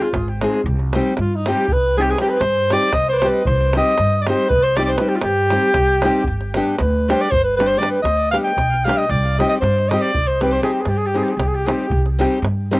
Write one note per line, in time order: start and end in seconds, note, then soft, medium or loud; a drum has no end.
0.02 0.28 F4 medium
0.02 davul high soft
0.13 0.44 G#1 medium
0.13 davul high medium
0.13 davul low medium
0.28 davul high soft
0.41 0.59 G#3 medium
0.41 0.60 C4 medium
0.41 0.60 D#4 soft
0.41 0.61 G#4 medium
0.41 davul high medium
0.54 davul high soft
0.64 0.97 C2 loud
0.64 davul low medium
0.79 davul high soft
0.93 1.12 G3 medium
0.93 1.13 C4 medium
0.93 1.13 D#4 medium
0.93 1.13 G4 medium
0.93 davul high medium
1.17 1.50 G2 loud
1.17 1.37 F4 medium
1.17 davul high medium
1.35 1.50 D#4 medium
1.46 1.64 G3 medium
1.46 1.65 C4 medium
1.46 1.65 D#4 medium
1.46 1.65 G4 medium
1.46 1.74 G4 medium
1.46 davul high medium
1.57 davul high soft
1.68 2.12 C2 medium
1.68 davul low medium
1.72 1.97 B4 medium
1.97 2.14 G3 soft
1.97 2.14 C4 soft
1.97 2.15 D#4 soft
1.97 2.15 G4 soft
1.97 2.03 G#4 medium
2.02 2.12 G4 medium
2.07 2.20 G#4 medium
2.07 davul high soft
2.18 2.37 G3 medium
2.18 2.37 C4 medium
2.18 2.37 D#4 medium
2.18 2.31 G4 medium
2.18 2.37 G4 medium
2.18 davul high medium
2.30 2.42 B4 loud
2.40 2.72 G2 medium
2.40 2.74 C5 loud
2.40 davul high medium
2.70 2.89 G3 medium
2.70 2.89 C4 medium
2.70 2.89 D#4 medium
2.70 2.90 G4 medium
2.70 2.95 D5 loud
2.70 davul high medium
2.83 davul high soft
2.93 3.26 C2 medium
2.93 3.08 D#5 loud
2.93 davul high medium
2.93 davul low medium
3.08 3.14 C5 medium
3.08 davul high soft
3.13 3.20 B4 medium
3.18 3.27 C5 loud
3.18 davul high medium
3.22 3.41 G3 medium
3.22 3.41 C4 soft
3.22 3.41 D#4 medium
3.22 3.41 G4 medium
3.22 3.45 B4 medium
3.45 3.78 C2 loud
3.45 3.74 C5 medium
3.45 davul low medium
3.61 davul high soft
3.73 3.93 G3 medium
3.73 3.94 C4 soft
3.73 3.94 D#4 medium
3.73 3.94 G4 medium
3.73 4.23 D#5 loud
3.73 davul high medium
3.98 4.30 G2 medium
3.98 davul high medium
4.22 4.29 D5 medium
4.27 4.46 G3 medium
4.27 4.46 C4 medium
4.27 4.47 D#4 medium
4.27 4.47 G4 medium
4.27 4.51 C5 loud
4.27 davul high medium
4.49 4.94 C2 medium
4.49 4.64 B4 loud
4.49 davul low loud
4.63 4.78 C5 loud
4.76 4.95 G3 medium
4.76 4.95 C4 soft
4.76 4.95 D#4 medium
4.76 4.96 G4 medium
4.76 4.84 D5 medium
4.76 davul high medium
4.85 4.99 C5 medium
4.85 4.90 D5 medium
4.85 davul high soft
4.98 5.17 G3 medium
4.98 5.17 C4 soft
4.98 5.18 D#4 soft
4.98 5.18 G4 medium
4.98 5.10 B4 medium
4.98 davul high medium
5.09 5.17 G4 medium
5.16 5.23 F4 medium
5.21 5.54 G2 medium
5.21 6.41 G4 loud
5.21 davul high medium
5.50 5.69 G3 medium
5.50 5.69 C4 medium
5.50 5.70 D#4 medium
5.50 5.70 G4 medium
5.50 davul high medium
5.62 davul high soft
5.74 6.06 C2 medium
5.74 davul high medium
5.74 davul low medium
5.88 davul high soft
6.02 6.21 G3 medium
6.02 6.21 C4 medium
6.02 6.22 D#4 medium
6.02 6.22 G4 medium
6.02 davul high medium
6.24 6.59 G1 medium
6.24 davul low medium
6.41 davul high soft
6.54 6.74 G3 medium
6.54 6.74 B3 medium
6.54 6.74 D4 medium
6.54 6.75 G4 medium
6.54 davul high medium
6.78 7.12 D2 loud
6.78 7.10 B4 medium
6.78 davul high medium
7.08 7.27 G3 medium
7.08 7.27 B3 medium
7.08 7.27 D4 medium
7.08 7.27 G4 medium
7.08 7.23 C5 medium
7.08 davul high medium
7.21 7.33 D5 medium
7.21 davul high soft
7.31 7.76 G1 medium
7.31 7.43 C5 loud
7.31 davul low medium
7.44 7.56 B4 medium
7.57 7.76 G3 medium
7.57 7.76 B3 medium
7.57 7.77 D4 medium
7.57 7.77 G4 medium
7.57 7.68 B4 loud
7.57 davul high medium
7.67 7.80 C5 medium
7.78 7.97 G3 medium
7.78 7.98 B3 soft
7.78 7.98 D4 soft
7.78 7.99 G4 medium
7.78 7.90 D5 medium
7.83 davul high medium
7.91 8.02 B4 medium
8.02 8.35 D2 medium
8.02 8.30 D#5 medium
8.02 davul high medium
8.32 8.51 G3 soft
8.32 8.51 B3 medium
8.32 8.51 D4 medium
8.32 8.51 G4 medium
8.32 8.37 F5 loud
8.32 davul high medium
8.44 8.86 G5 medium
8.44 davul high soft
8.57 8.88 B1 medium
8.57 davul high medium
8.57 davul low medium
8.74 davul high soft
8.85 9.03 G3 medium
8.85 9.04 B3 medium
8.85 9.04 D4 medium
8.85 9.04 G4 medium
8.85 8.99 F5 medium
8.89 davul high medium
8.98 9.12 D#5 medium
9.09 9.41 C2 loud
9.09 9.41 D5 medium
9.09 davul low medium
9.25 davul high soft
9.39 9.56 G3 medium
9.39 9.57 C4 medium
9.39 9.57 D#4 medium
9.39 9.57 G4 medium
9.39 9.49 D#5 medium
9.39 davul high medium
9.49 9.55 D#5 medium
9.49 davul high soft
9.61 9.93 G2 loud
9.61 9.91 C5 medium
9.61 davul high medium
9.78 davul high soft
9.90 10.09 G3 medium
9.90 10.09 C4 medium
9.90 10.09 D#4 soft
9.90 10.10 G4 medium
9.90 10.03 D#5 medium
9.90 davul high medium
10.02 10.29 D5 medium
10.02 davul high soft
10.15 10.57 C2 medium
10.15 davul low medium
10.27 10.43 C5 medium
10.41 10.58 G3 medium
10.41 10.58 C4 medium
10.41 10.58 D#4 soft
10.41 10.59 G4 medium
10.41 10.53 B4 medium
10.41 davul high medium
10.52 10.62 C5 medium
10.52 davul high soft
10.62 10.79 G3 medium
10.62 10.80 C4 soft
10.62 10.80 D#4 medium
10.62 10.80 G4 medium
10.62 10.73 G#4 medium
10.62 davul high medium
10.73 10.81 G4 soft
10.80 10.90 G#4 medium
10.85 11.17 G2 medium
10.85 10.99 G4 medium
10.85 davul high medium
10.97 11.08 G#4 medium
11.01 davul high soft
11.06 11.18 G4 medium
11.14 11.32 G3 medium
11.14 11.32 C4 soft
11.14 11.33 D#4 medium
11.14 11.33 G4 medium
11.14 11.25 G#4 medium
11.23 11.32 G4 medium
11.28 11.39 G#4 soft
11.28 davul high soft
11.37 11.69 C2 medium
11.37 11.49 G4 medium
11.37 davul high medium
11.37 davul low medium
11.47 11.56 G#4 medium
11.54 11.67 G4 medium
11.54 davul high soft
11.66 11.85 G3 medium
11.66 11.85 C4 medium
11.66 11.85 D#4 medium
11.66 11.85 G4 medium
11.66 11.73 G#4 medium
11.66 davul high medium
11.72 12.05 G4 medium
11.80 davul high soft
11.90 12.22 C2 loud
11.90 davul low medium
12.06 davul high soft
12.19 12.37 G3 medium
12.19 12.37 C4 medium
12.19 12.37 D#4 medium
12.19 12.38 G4 medium
12.19 davul high medium
12.42 12.74 G2 loud
12.42 davul high medium
12.71 12.80 G3 medium
12.71 12.80 C4 medium
12.71 12.80 D#4 medium
12.71 12.80 G4 medium
12.71 davul high medium